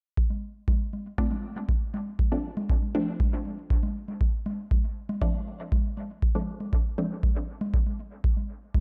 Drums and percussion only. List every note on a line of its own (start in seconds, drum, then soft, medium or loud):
0.17 kick loud
0.30 high conga soft
0.68 kick loud
0.68 high conga medium
0.93 high conga soft
1.18 kick loud
1.31 high conga medium
1.56 high conga soft
1.69 kick loud
1.94 high conga medium
2.19 kick loud
2.19 high conga soft
2.57 high conga medium
2.70 kick loud
2.82 high conga soft
3.20 kick loud
3.20 high conga medium
3.45 high conga soft
3.70 kick loud
3.83 high conga medium
4.08 high conga soft
4.21 kick loud
4.46 high conga medium
4.71 kick loud
4.71 high conga soft
5.09 high conga medium
5.22 kick loud
5.34 high conga soft
5.72 kick loud
5.72 high conga medium
5.97 high conga soft
6.22 kick loud
6.35 high conga medium
6.60 high conga soft
6.73 kick loud
6.98 high conga medium
7.23 kick loud
7.23 high conga soft
7.61 high conga medium
7.74 kick loud
7.86 high conga soft
8.24 kick loud
8.37 high conga soft
8.75 kick loud
8.75 high conga medium